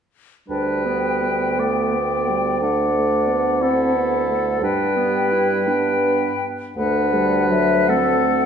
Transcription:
0.48 D2 G3 D4 B4 G5
0.85 B3
1.22 B3
1.58 A3 D5
1.94 B3
2.28 G3
2.61 A3 D4 D5 F#5
2.94 A3
3.27 B3
3.61 C4 E4 A4
3.95 B3
4.27 A3
4.61 G2 G3 D4 B4 G5
4.96 B3
5.32 E4
5.67 B3 D4 G5
6.76 D2 A3 D4 B4 F#5
7.13 G3
7.50 F#3 E5
7.88 A3 C4 A4 F#5

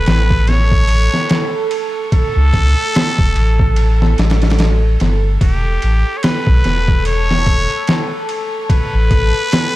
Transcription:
Already playing: A4 B4
0.06 A1, snare, ride
0.30 kick
0.47 C#5, snare, ride
0.72 kick
0.88 ride
1.14 snare
1.29 snare, ride
1.71 ride
2.12 A4, kick, ride
2.37 C#2
2.53 C#2, kick, ride
2.95 snare, ride
3.19 E1, kick
3.36 A1, ride
3.59 kick
3.76 ride
4.02 snare
4.18 A1, snare, ride
4.30 snare, ride
4.42 snare, ride
4.50 snare, ride
4.59 snare, ride
5.00 G1, snare, ride
5.41 E1 G4 A4, kick, ride
5.82 A1, ride
6.18 C#5
6.23 B4, snare, ride
6.47 B1, kick
6.64 E1, snare, ride
6.88 kick
7.05 C#5, ride
7.31 snare
7.46 kick, ride
7.70 ride
7.87 snare, ride
8.29 ride
8.70 B4, kick, ride
8.94 A1
9.11 A1, kick, ride
9.52 snare, ride

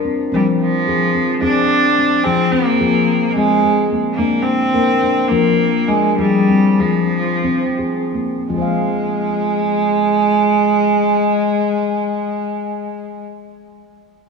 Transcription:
0.05 C4
0.32 F3 G3 C4
0.62 F3
0.88 F3 G#4
1.15 C4
1.42 C4 D4 G#4
1.98 C4
2.24 F3 C4 G#4
2.51 A#3 C4
2.81 F3 G#4
3.30 G#3 A#3
3.36 C4
3.64 G#4
3.92 A#3
4.14 A#3
4.19 A#3 D4
4.42 C4
4.74 A#3 A#4
5.03 D4
5.28 F3 A#3 A#4
5.88 G#3 D4
6.18 F3 G3 G#4
6.49 C4
6.80 F3 G#4
7.44 C4
7.79 G#4
8.14 A#3
8.50 F3 G#3 F4
8.54 G#4 C5
8.62 F5

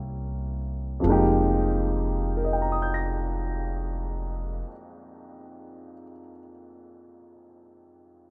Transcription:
Already playing: C2 A#3 C#4 E4 G4
1.00 F2 F3
1.04 F1 G#3 A#3
1.10 D#4 G4
2.37 A#4
2.44 D#5
2.53 G5
2.62 A#5
2.72 D#6
2.82 G6
2.94 A#6

